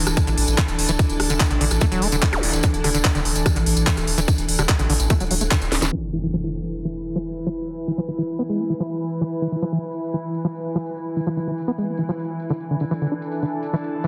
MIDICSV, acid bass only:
0, 0, Header, 1, 2, 480
1, 0, Start_track
1, 0, Tempo, 410959
1, 1159, Time_signature, 4, 2, 24, 8
1, 16438, End_track
2, 0, Start_track
2, 0, Title_t, "Acid bass"
2, 0, Program_c, 0, 38
2, 319, Note_on_c, 0, 50, 83
2, 345, Note_off_c, 0, 50, 0
2, 678, Note_on_c, 0, 52, 98
2, 705, Note_off_c, 0, 52, 0
2, 1038, Note_on_c, 0, 52, 101
2, 1065, Note_off_c, 0, 52, 0
2, 1519, Note_on_c, 0, 50, 73
2, 1563, Note_off_c, 0, 50, 0
2, 1639, Note_on_c, 0, 52, 104
2, 1665, Note_off_c, 0, 52, 0
2, 1759, Note_on_c, 0, 50, 73
2, 1785, Note_off_c, 0, 50, 0
2, 1879, Note_on_c, 0, 50, 77
2, 1923, Note_off_c, 0, 50, 0
2, 2119, Note_on_c, 0, 57, 99
2, 2163, Note_off_c, 0, 57, 0
2, 2239, Note_on_c, 0, 54, 78
2, 2358, Note_on_c, 0, 57, 76
2, 2376, Note_off_c, 0, 54, 0
2, 2425, Note_off_c, 0, 57, 0
2, 2478, Note_on_c, 0, 50, 74
2, 2523, Note_off_c, 0, 50, 0
2, 2598, Note_on_c, 0, 52, 99
2, 2625, Note_off_c, 0, 52, 0
2, 3078, Note_on_c, 0, 50, 106
2, 3105, Note_off_c, 0, 50, 0
2, 3319, Note_on_c, 0, 50, 80
2, 3385, Note_off_c, 0, 50, 0
2, 3439, Note_on_c, 0, 50, 76
2, 3483, Note_off_c, 0, 50, 0
2, 3559, Note_on_c, 0, 52, 104
2, 3585, Note_off_c, 0, 52, 0
2, 3678, Note_on_c, 0, 50, 75
2, 3745, Note_off_c, 0, 50, 0
2, 4159, Note_on_c, 0, 50, 83
2, 4185, Note_off_c, 0, 50, 0
2, 4519, Note_on_c, 0, 52, 101
2, 4545, Note_off_c, 0, 52, 0
2, 4879, Note_on_c, 0, 52, 104
2, 4905, Note_off_c, 0, 52, 0
2, 5359, Note_on_c, 0, 50, 72
2, 5403, Note_off_c, 0, 50, 0
2, 5479, Note_on_c, 0, 52, 101
2, 5505, Note_off_c, 0, 52, 0
2, 5599, Note_on_c, 0, 50, 73
2, 5626, Note_off_c, 0, 50, 0
2, 5719, Note_on_c, 0, 50, 81
2, 5763, Note_off_c, 0, 50, 0
2, 5959, Note_on_c, 0, 57, 107
2, 6003, Note_off_c, 0, 57, 0
2, 6080, Note_on_c, 0, 54, 79
2, 6123, Note_off_c, 0, 54, 0
2, 6200, Note_on_c, 0, 54, 75
2, 6243, Note_off_c, 0, 54, 0
2, 6319, Note_on_c, 0, 57, 74
2, 6346, Note_off_c, 0, 57, 0
2, 6439, Note_on_c, 0, 50, 83
2, 6505, Note_off_c, 0, 50, 0
2, 6799, Note_on_c, 0, 52, 76
2, 6843, Note_off_c, 0, 52, 0
2, 6919, Note_on_c, 0, 52, 100
2, 6945, Note_off_c, 0, 52, 0
2, 7159, Note_on_c, 0, 52, 76
2, 7225, Note_off_c, 0, 52, 0
2, 7279, Note_on_c, 0, 52, 77
2, 7323, Note_off_c, 0, 52, 0
2, 7398, Note_on_c, 0, 53, 100
2, 7425, Note_off_c, 0, 53, 0
2, 7519, Note_on_c, 0, 52, 70
2, 7585, Note_off_c, 0, 52, 0
2, 7999, Note_on_c, 0, 52, 77
2, 8025, Note_off_c, 0, 52, 0
2, 8359, Note_on_c, 0, 53, 102
2, 8385, Note_off_c, 0, 53, 0
2, 8719, Note_on_c, 0, 53, 101
2, 8746, Note_off_c, 0, 53, 0
2, 9199, Note_on_c, 0, 52, 73
2, 9243, Note_off_c, 0, 52, 0
2, 9319, Note_on_c, 0, 53, 98
2, 9346, Note_off_c, 0, 53, 0
2, 9439, Note_on_c, 0, 52, 75
2, 9465, Note_off_c, 0, 52, 0
2, 9559, Note_on_c, 0, 52, 75
2, 9603, Note_off_c, 0, 52, 0
2, 9799, Note_on_c, 0, 59, 106
2, 9843, Note_off_c, 0, 59, 0
2, 9919, Note_on_c, 0, 56, 79
2, 10039, Note_on_c, 0, 59, 78
2, 10056, Note_off_c, 0, 56, 0
2, 10105, Note_off_c, 0, 59, 0
2, 10159, Note_on_c, 0, 52, 69
2, 10203, Note_off_c, 0, 52, 0
2, 10279, Note_on_c, 0, 53, 99
2, 10305, Note_off_c, 0, 53, 0
2, 10758, Note_on_c, 0, 52, 102
2, 10785, Note_off_c, 0, 52, 0
2, 10999, Note_on_c, 0, 52, 77
2, 11065, Note_off_c, 0, 52, 0
2, 11119, Note_on_c, 0, 52, 75
2, 11163, Note_off_c, 0, 52, 0
2, 11238, Note_on_c, 0, 53, 104
2, 11265, Note_off_c, 0, 53, 0
2, 11358, Note_on_c, 0, 52, 71
2, 11425, Note_off_c, 0, 52, 0
2, 11838, Note_on_c, 0, 52, 78
2, 11865, Note_off_c, 0, 52, 0
2, 12199, Note_on_c, 0, 53, 99
2, 12225, Note_off_c, 0, 53, 0
2, 12559, Note_on_c, 0, 53, 104
2, 12585, Note_off_c, 0, 53, 0
2, 13039, Note_on_c, 0, 52, 70
2, 13083, Note_off_c, 0, 52, 0
2, 13159, Note_on_c, 0, 53, 104
2, 13185, Note_off_c, 0, 53, 0
2, 13279, Note_on_c, 0, 52, 72
2, 13305, Note_off_c, 0, 52, 0
2, 13399, Note_on_c, 0, 52, 79
2, 13443, Note_off_c, 0, 52, 0
2, 13639, Note_on_c, 0, 59, 100
2, 13683, Note_off_c, 0, 59, 0
2, 13759, Note_on_c, 0, 56, 75
2, 13879, Note_on_c, 0, 59, 76
2, 13897, Note_off_c, 0, 56, 0
2, 13945, Note_off_c, 0, 59, 0
2, 13999, Note_on_c, 0, 52, 71
2, 14043, Note_off_c, 0, 52, 0
2, 14119, Note_on_c, 0, 53, 104
2, 14146, Note_off_c, 0, 53, 0
2, 14599, Note_on_c, 0, 50, 102
2, 14625, Note_off_c, 0, 50, 0
2, 14839, Note_on_c, 0, 50, 76
2, 14905, Note_off_c, 0, 50, 0
2, 14959, Note_on_c, 0, 50, 76
2, 15003, Note_off_c, 0, 50, 0
2, 15079, Note_on_c, 0, 52, 105
2, 15106, Note_off_c, 0, 52, 0
2, 15199, Note_on_c, 0, 50, 75
2, 15265, Note_off_c, 0, 50, 0
2, 15319, Note_on_c, 0, 62, 75
2, 15346, Note_off_c, 0, 62, 0
2, 15679, Note_on_c, 0, 50, 78
2, 15706, Note_off_c, 0, 50, 0
2, 16039, Note_on_c, 0, 52, 96
2, 16065, Note_off_c, 0, 52, 0
2, 16399, Note_on_c, 0, 52, 103
2, 16425, Note_off_c, 0, 52, 0
2, 16438, End_track
0, 0, End_of_file